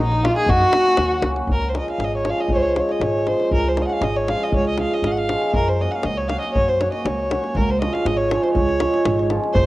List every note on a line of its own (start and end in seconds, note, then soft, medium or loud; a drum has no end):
0.00 0.27 A#1 medium
0.00 0.21 F#3 medium
0.00 0.20 D#4 medium
0.00 0.25 D#4 loud
0.12 davul high soft
0.22 0.53 F#3 medium
0.22 0.44 A#3 medium
0.22 0.45 D#4 medium
0.22 0.36 F4 medium
0.22 0.36 F4 loud
0.22 0.45 F#4 medium
0.22 davul high medium
0.36 0.51 G#4 loud
0.36 0.48 G#4 medium
0.36 davul high soft
0.46 0.62 F#2 loud
0.46 1.25 F#4 loud
0.46 1.25 F#4 medium
0.46 davul low loud
0.61 davul high soft
0.71 1.21 F#3 medium
0.71 0.94 A#3 medium
0.71 0.94 C#4 medium
0.71 0.95 F#4 medium
0.71 davul high medium
0.86 davul high soft
0.97 1.21 D#2 medium
0.97 davul high medium
1.11 davul high soft
1.22 1.46 C#2 medium
1.22 1.54 F#3 medium
1.22 1.44 A#3 medium
1.22 1.45 C#4 medium
1.22 1.45 F#4 medium
1.22 davul high medium
1.36 davul high soft
1.47 1.78 C#2 medium
1.47 davul low medium
1.52 1.70 A#4 medium
1.62 davul high soft
1.69 1.78 C5 medium
1.73 2.22 F3 medium
1.73 2.23 G#3 soft
1.73 1.96 C#4 soft
1.73 1.96 F4 medium
1.73 davul high medium
1.79 1.89 D#5 medium
1.88 2.06 F5 medium
1.88 davul high soft
1.98 2.29 G#1 medium
1.98 davul high medium
2.04 2.15 D#5 medium
2.17 2.31 C#5 medium
2.23 2.74 F3 medium
2.23 2.75 G#3 soft
2.23 2.46 C#4 soft
2.23 2.47 F4 medium
2.23 davul high medium
2.29 2.42 F5 medium
2.39 2.52 D#5 medium
2.39 davul high soft
2.48 2.80 C#2 medium
2.48 davul low medium
2.54 2.62 C5 medium
2.54 2.56 C#5 medium
2.60 2.65 C#5 medium
2.60 davul high soft
2.66 2.81 C5 medium
2.75 3.25 F3 medium
2.75 3.26 G#3 medium
2.75 2.98 C#4 soft
2.75 2.98 F4 medium
2.75 davul high medium
2.80 2.93 C#5 medium
2.89 3.04 D#5 medium
2.89 davul high soft
3.00 3.31 G#1 medium
3.00 3.29 C#5 medium
3.00 davul high medium
3.26 3.75 F3 medium
3.26 3.76 G#3 medium
3.26 3.49 C#4 soft
3.26 3.49 F4 medium
3.26 3.52 C5 medium
3.26 davul high soft
3.40 davul high soft
3.51 3.82 C#2 medium
3.51 3.69 A#4 medium
3.51 davul low medium
3.64 3.83 C5 medium
3.64 davul high soft
3.76 4.27 F3 medium
3.76 4.27 G#3 medium
3.76 3.99 C#4 medium
3.76 3.99 F4 medium
3.76 davul high medium
3.82 3.86 D#5 medium
3.87 3.94 F#5 medium
3.87 davul high soft
3.92 4.05 F5 medium
4.01 4.32 G#1 medium
4.01 4.18 D#5 medium
4.01 davul high medium
4.17 4.31 C#5 medium
4.28 4.77 F3 medium
4.28 4.77 G#3 medium
4.28 4.50 C#4 medium
4.28 4.50 F4 medium
4.28 4.45 F5 loud
4.28 davul high medium
4.40 4.55 D#5 medium
4.40 davul high soft
4.52 4.83 C#2 medium
4.52 4.67 C#5 medium
4.52 davul low medium
4.65 4.79 D#5 medium
4.65 davul high soft
4.78 5.28 F3 medium
4.78 5.28 G#3 soft
4.78 5.00 C#4 soft
4.78 5.00 F4 medium
4.78 4.95 F5 medium
4.78 davul high medium
4.91 5.08 D#5 medium
4.91 davul high soft
5.02 5.33 G#1 medium
5.02 5.13 F5 medium
5.02 davul high medium
5.11 5.19 F#5 medium
5.17 5.54 F5 medium
5.17 davul high soft
5.29 5.59 F3 medium
5.29 5.59 G#3 medium
5.29 5.51 C#4 medium
5.29 5.51 F4 medium
5.29 davul high medium
5.42 davul high soft
5.53 5.84 F#2 medium
5.53 5.69 A#4 loud
5.53 davul low medium
5.66 5.82 C5 medium
5.66 davul high soft
5.79 6.29 F#3 medium
5.79 6.01 A#3 soft
5.79 6.01 C#4 medium
5.79 6.02 F#4 medium
5.79 5.92 D#5 medium
5.91 6.06 F5 medium
5.91 5.96 F#5 soft
5.91 davul high soft
6.03 6.35 C#2 medium
6.03 6.19 D#5 medium
6.03 davul high medium
6.17 6.29 C#5 medium
6.28 6.80 F#3 medium
6.28 6.52 A#3 medium
6.28 6.52 C#4 medium
6.28 6.40 F5 medium
6.28 davul high medium
6.32 6.52 F#4 medium
6.40 6.49 D#5 medium
6.40 davul high soft
6.49 6.70 C#5 medium
6.49 6.54 D#5 medium
6.55 6.85 F#2 medium
6.55 davul low medium
6.68 6.82 C5 medium
6.68 davul high soft
6.81 7.28 F#3 medium
6.81 7.02 A#3 medium
6.81 7.02 C#4 medium
6.81 7.02 F#4 medium
6.81 6.92 C#5 medium
6.81 davul high medium
6.92 7.07 D#5 medium
6.92 davul high soft
7.05 7.35 C#2 medium
7.05 7.58 C#5 medium
7.05 davul high medium
7.29 7.60 F#3 medium
7.29 7.51 A#3 medium
7.29 7.52 C#4 medium
7.29 7.52 F#4 medium
7.29 davul high medium
7.44 davul high soft
7.55 7.85 C#2 medium
7.55 7.71 A#4 medium
7.55 davul low medium
7.69 7.80 C5 medium
7.69 davul high soft
7.80 8.28 F3 medium
7.80 8.29 G#3 soft
7.80 8.02 C#4 medium
7.80 8.02 F4 medium
7.80 7.94 D#5 medium
7.80 davul high medium
7.93 8.07 F5 medium
7.93 davul high soft
8.05 8.35 G#1 medium
8.05 8.18 D#5 medium
8.05 davul high medium
8.17 8.44 C#5 medium
8.29 8.78 F3 medium
8.29 8.79 G#3 medium
8.29 8.52 C#4 medium
8.29 8.52 F4 medium
8.29 davul high medium
8.42 8.53 C5 medium
8.42 davul high soft
8.53 8.85 C#2 medium
8.53 9.25 C#5 medium
8.53 davul low medium
8.69 davul high soft
8.79 9.29 F3 medium
8.79 9.29 G#3 medium
8.79 9.02 C#4 medium
8.79 9.02 F4 medium
8.79 davul high medium
8.94 davul high soft
9.05 9.35 G#1 loud
9.05 davul high medium
9.19 davul high soft
9.30 9.60 F3 medium
9.30 9.60 G#3 medium
9.30 9.51 C#4 medium
9.30 9.52 F4 medium
9.30 davul high medium
9.44 davul high soft
9.53 9.66 F#1 loud
9.53 9.66 C5 loud
9.53 9.66 C5 medium
9.53 davul low loud